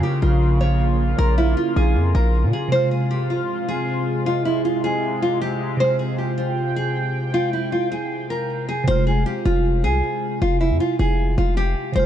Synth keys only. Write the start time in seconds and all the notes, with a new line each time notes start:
Already playing: C#3 A#3 F4
2.68 C3 G#3
2.75 F4
5.77 C3 G#3
5.84 F4
8.84 C3 G#3
8.91 F4
11.92 C3 G#3
11.99 F4